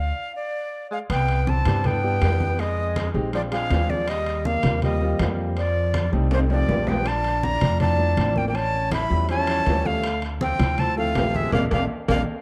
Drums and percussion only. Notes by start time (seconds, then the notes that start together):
1.10 high conga, high timbale
1.28 high conga, high timbale
1.47 high conga
1.65 high conga, low conga, high timbale
1.84 high conga, low conga, high timbale
2.03 high conga
2.22 high conga, high timbale, low timbale
2.40 high conga
2.59 high conga, high timbale
2.78 high conga
2.96 high conga, high timbale
3.15 high conga
3.33 high conga, high timbale
3.52 high conga, high timbale
3.71 high conga, high timbale, low timbale
3.90 high conga
4.08 high conga, high timbale
4.26 high conga, high timbale
4.45 high conga
4.63 high conga, low conga, high timbale
4.82 high conga, low conga, high timbale
5.01 high conga
5.19 high conga, high timbale, low timbale
5.57 high conga, high timbale
5.76 high conga
5.94 high conga, high timbale
6.13 high conga
6.31 high timbale
6.50 high conga, high timbale
6.68 high conga, low timbale
6.87 high conga, low timbale
7.06 high conga, high timbale
7.24 high conga, high timbale
7.43 high conga
7.61 high conga, low conga, high timbale
7.80 high conga, low conga, high timbale
7.99 high conga
8.17 high conga, high timbale
8.36 high conga
8.55 high conga, high timbale
8.73 high conga
8.92 high conga, high timbale
9.11 high conga
9.29 high conga, high timbale
9.47 high conga, high timbale
9.66 high conga, high timbale, low timbale
9.85 high conga
10.04 high conga, high timbale
10.22 high conga, high timbale
10.41 high conga
10.59 high conga, low conga, high timbale
10.78 high conga, low conga, high timbale
10.97 high conga
11.15 high conga, high timbale, low timbale
11.35 high conga
11.52 high conga, high timbale
11.71 high conga, high timbale
12.09 high conga, high timbale